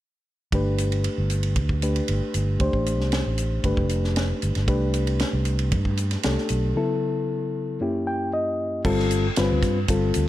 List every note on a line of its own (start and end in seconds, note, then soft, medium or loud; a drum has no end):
0.52 1.07 G1 medium
0.52 1.80 A3 medium
0.52 1.80 D4 medium
0.52 1.81 G4 medium
0.52 1.81 B4 medium
0.52 kick medium
0.52 ride medium
0.78 hi-hat pedal medium
0.78 ride soft
0.92 ride soft
1.04 ride medium
1.18 1.58 G1 medium
1.30 hi-hat pedal medium
1.30 ride soft
1.43 ride medium
1.56 2.00 D2 medium
1.56 kick medium
1.56 ride medium
1.69 kick medium
1.82 2.58 A3 soft
1.82 2.59 D4 soft
1.82 2.59 G4 soft
1.82 2.61 B4 soft
1.82 hi-hat pedal medium
1.82 ride medium
1.96 ride medium
2.08 2.20 G1 medium
2.08 ride medium
2.34 2.56 G1 medium
2.34 hi-hat pedal medium
2.34 ride soft
2.59 2.72 D2 medium
2.59 3.62 A3 medium
2.59 3.62 D4 medium
2.59 3.63 G4 medium
2.59 3.63 C5 medium
2.59 kick medium
2.59 ride medium
2.73 2.99 A1 medium
2.73 kick medium
2.86 hi-hat pedal medium
2.86 ride soft
2.99 3.21 C2 medium
2.99 snare soft
3.12 snare medium
3.12 ride medium
3.26 3.58 A1 medium
3.38 hi-hat pedal medium
3.38 ride soft
3.64 3.75 G1 medium
3.64 4.66 A3 medium
3.64 4.67 D4 medium
3.64 4.67 G4 soft
3.64 4.67 B4 medium
3.64 kick medium
3.64 ride medium
3.77 4.32 F1 medium
3.77 kick medium
3.89 hi-hat pedal medium
3.89 ride soft
4.04 snare soft
4.16 snare medium
4.16 ride medium
4.42 4.54 G1 medium
4.42 hi-hat pedal medium
4.42 ride soft
4.55 4.67 G1 medium
4.55 snare soft
4.55 ride soft
4.67 5.23 C2 medium
4.67 6.21 A3 medium
4.67 6.21 D4 medium
4.67 6.21 G4 medium
4.67 6.22 B4 medium
4.67 kick medium
4.67 ride medium
4.94 hi-hat pedal medium
4.94 ride soft
5.07 ride soft
5.19 snare medium
5.19 ride medium
5.33 5.74 C2 medium
5.45 hi-hat pedal medium
5.45 ride soft
5.59 ride soft
5.72 6.16 G2 medium
5.72 kick medium
5.72 ride medium
5.85 kick medium
5.97 hi-hat pedal medium
5.97 ride medium
6.11 snare soft
6.11 ride medium
6.23 6.36 C2 medium
6.23 6.77 A3 soft
6.23 6.77 D4 soft
6.23 6.77 G4 soft
6.23 6.76 A4 medium
6.23 snare medium
6.23 ride medium
6.38 snare soft
6.49 6.72 B1 medium
6.49 hi-hat pedal medium
6.49 ride soft
6.75 7.78 C#3 medium
6.75 7.78 F#3 soft
6.75 7.79 B3 medium
6.75 7.79 E4 medium
6.75 7.79 A4 medium
7.80 8.83 F#2 medium
7.80 8.83 A#3 soft
7.80 8.83 C#4 soft
7.80 8.83 E4 soft
7.80 8.84 G4 medium
8.07 8.31 G5 medium
8.33 8.82 D#5 medium
8.85 9.28 G1 medium
8.85 9.26 G3 medium
8.85 9.26 C4 medium
8.85 9.26 F4 medium
8.85 9.26 A4 medium
8.85 kick loud
8.85 crash medium
9.00 snare soft
9.11 hi-hat pedal medium
9.11 ride medium
9.36 9.49 G1 medium
9.36 9.78 G3 medium
9.36 9.78 C4 medium
9.36 9.78 F4 medium
9.36 9.79 B4 medium
9.36 snare loud
9.36 hi-hat pedal medium
9.36 ride medium
9.52 9.62 D2 medium
9.62 9.85 G2 medium
9.62 kick medium
9.62 snare soft
9.62 hi-hat pedal medium
9.62 ride medium
9.88 10.11 G1 medium
9.88 10.28 G3 medium
9.88 10.28 C4 medium
9.88 10.28 F4 medium
9.88 10.28 A4 medium
9.88 kick medium
9.88 hi-hat pedal medium
9.88 ride medium
10.14 10.28 D2 medium
10.14 hi-hat pedal medium
10.14 ride medium